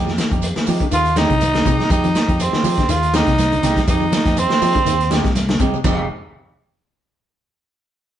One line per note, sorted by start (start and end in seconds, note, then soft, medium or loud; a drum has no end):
0.00 0.17 F2 medium
0.07 0.16 F3 medium
0.07 snare soft
0.07 shekere soft
0.18 0.39 D#3 medium
0.18 snare medium
0.18 closed hi-hat soft
0.18 high conga medium
0.18 shekere medium
0.31 0.55 F2 medium
0.31 0.47 C4 medium
0.31 0.46 D#4 soft
0.31 0.46 G4 medium
0.31 kick medium
0.31 closed hi-hat soft
0.31 shekere soft
0.42 closed hi-hat medium
0.42 high conga soft
0.42 shekere medium
0.56 0.77 D#3 medium
0.56 muted fingered electric bass stroke soft
0.56 snare medium
0.56 closed hi-hat soft
0.56 shekere soft
0.66 0.81 F3 loud
0.66 0.84 G#3 medium
0.66 0.84 C4 medium
0.66 0.84 D#4 medium
0.66 0.84 G4 medium
0.66 open hi-hat medium
0.66 low conga medium
0.66 shekere medium
0.80 0.91 D3 medium
0.80 kick medium
0.80 closed hi-hat soft
0.80 shekere soft
0.91 1.28 D#2 loud
0.91 1.13 D#3 medium
0.91 1.16 F4 medium
0.91 closed hi-hat medium
0.91 high conga soft
0.91 shekere medium
1.05 closed hi-hat soft
1.05 shekere soft
1.16 1.28 D3 medium
1.16 1.33 G#3 medium
1.16 1.33 C4 medium
1.16 1.33 D#4 medium
1.16 1.88 D#4 medium
1.16 1.33 G4 medium
1.16 snare medium
1.16 closed hi-hat soft
1.16 high conga medium
1.16 shekere medium
1.29 1.64 C2 loud
1.29 1.51 C3 medium
1.29 kick medium
1.29 closed hi-hat soft
1.29 shekere soft
1.41 closed hi-hat medium
1.41 high conga medium
1.41 shekere medium
1.54 1.64 D3 medium
1.54 snare medium
1.54 closed hi-hat soft
1.54 shekere soft
1.65 1.79 C2 medium
1.65 1.87 C3 medium
1.65 1.82 G#3 medium
1.65 1.82 C4 medium
1.65 1.82 D#4 medium
1.65 1.82 G4 medium
1.65 kick medium
1.65 closed hi-hat medium
1.65 low conga medium
1.65 shekere medium
1.79 snare soft
1.79 high conga medium
1.79 shekere soft
1.90 2.14 F2 medium
1.90 2.06 G#3 medium
1.90 2.06 C4 medium
1.90 2.07 D#4 medium
1.90 2.44 D#4 medium
1.90 2.07 G4 medium
1.90 kick medium
1.90 closed hi-hat medium
1.90 high conga soft
1.90 shekere medium
2.04 2.14 F3 medium
2.04 closed hi-hat soft
2.04 low conga medium
2.04 shekere soft
2.15 snare medium
2.15 closed hi-hat soft
2.15 high conga medium
2.15 shekere medium
2.28 2.52 F2 loud
2.28 2.44 C4 soft
2.28 2.43 D#4 soft
2.28 2.43 G4 medium
2.28 kick medium
2.28 closed hi-hat soft
2.28 shekere soft
2.40 2.92 C4 medium
2.40 closed hi-hat medium
2.40 high conga soft
2.40 shekere medium
2.53 2.74 D#3 medium
2.53 muted fingered electric bass stroke soft
2.53 snare medium
2.53 shekere soft
2.64 2.77 F3 loud
2.64 2.80 G#3 medium
2.64 2.81 C4 medium
2.64 2.81 D#4 medium
2.64 2.81 G4 medium
2.64 open hi-hat medium
2.64 low conga medium
2.64 shekere medium
2.78 2.88 D3 medium
2.78 kick medium
2.78 snare soft
2.78 closed hi-hat soft
2.78 shekere soft
2.88 3.25 D#2 loud
2.88 3.10 D#3 medium
2.88 3.15 F4 loud
2.88 closed hi-hat medium
2.88 high conga soft
2.88 shekere medium
3.03 closed hi-hat soft
3.03 shekere soft
3.14 3.25 D3 medium
3.14 3.30 G#3 medium
3.14 3.30 C4 medium
3.14 3.30 D#4 medium
3.14 3.85 D#4 medium
3.14 3.30 G4 medium
3.14 snare medium
3.14 closed hi-hat medium
3.14 high conga medium
3.14 shekere medium
3.27 3.61 C2 loud
3.27 3.48 C3 medium
3.27 kick medium
3.27 snare soft
3.27 closed hi-hat soft
3.27 shekere soft
3.38 snare soft
3.38 closed hi-hat medium
3.38 high conga medium
3.38 shekere medium
3.52 3.61 D3 medium
3.52 closed hi-hat soft
3.52 high conga medium
3.52 shekere soft
3.63 3.76 C2 loud
3.63 3.84 C3 medium
3.63 3.79 G#3 medium
3.63 3.79 C4 medium
3.63 3.80 D#4 medium
3.63 3.80 G4 medium
3.63 snare soft
3.63 closed hi-hat medium
3.63 low conga medium
3.63 shekere medium
3.76 kick medium
3.76 snare soft
3.76 closed hi-hat soft
3.76 high conga medium
3.76 shekere soft
3.87 4.11 F2 medium
3.87 4.04 G#3 medium
3.87 4.04 C4 medium
3.87 4.04 D#4 medium
3.87 4.41 D#4 medium
3.87 4.04 G4 medium
3.87 kick medium
3.87 closed hi-hat medium
3.87 shekere medium
4.00 4.10 F3 medium
4.00 shekere soft
4.11 4.33 D#3 medium
4.11 snare medium
4.11 closed hi-hat soft
4.11 high conga medium
4.11 shekere medium
4.25 4.49 F2 medium
4.25 4.41 C4 soft
4.25 4.41 D#4 medium
4.25 4.40 G4 medium
4.25 kick medium
4.25 snare soft
4.25 closed hi-hat soft
4.25 shekere soft
4.37 5.12 C4 medium
4.37 closed hi-hat medium
4.37 high conga soft
4.37 shekere medium
4.49 4.71 D#3 medium
4.49 muted fingered electric bass stroke soft
4.49 snare medium
4.49 closed hi-hat soft
4.49 shekere soft
4.61 4.75 F3 loud
4.61 4.78 G#3 medium
4.61 4.78 C4 medium
4.61 4.78 D#4 medium
4.61 4.78 G4 medium
4.61 snare soft
4.61 open hi-hat medium
4.61 low conga medium
4.61 shekere medium
4.74 4.84 D3 medium
4.74 kick medium
4.74 closed hi-hat soft
4.74 high conga medium
4.74 shekere soft
4.85 5.22 D#2 loud
4.85 5.07 D#3 medium
4.85 closed hi-hat medium
4.85 high conga soft
4.85 shekere loud
5.00 closed hi-hat soft
5.00 shekere soft
5.10 5.22 D3 medium
5.10 5.27 G#3 medium
5.10 5.27 C4 medium
5.10 5.27 D#4 medium
5.10 5.28 G4 medium
5.10 snare medium
5.10 closed hi-hat soft
5.10 high conga medium
5.10 shekere medium
5.23 5.58 C2 loud
5.23 5.45 C3 medium
5.23 kick medium
5.23 snare soft
5.23 closed hi-hat soft
5.23 shekere soft
5.35 snare soft
5.35 closed hi-hat medium
5.35 high conga medium
5.35 shekere medium
5.49 5.58 D3 medium
5.49 snare medium
5.49 closed hi-hat soft
5.49 high conga medium
5.49 shekere soft
5.59 5.73 C2 medium
5.59 5.81 C3 medium
5.59 5.76 G#3 medium
5.59 5.76 C4 medium
5.59 5.77 D#4 medium
5.59 5.76 G4 medium
5.59 kick medium
5.59 closed hi-hat medium
5.59 low conga medium
5.59 shekere medium
5.74 low conga medium
5.74 shekere soft
5.84 6.07 F1 medium
5.84 6.00 F3 medium
5.84 6.05 G#3 medium
5.84 6.05 C4 medium
5.84 6.06 D#4 medium
5.84 6.06 G4 loud
5.84 kick medium
5.84 crash medium
5.84 low conga loud
5.84 shekere medium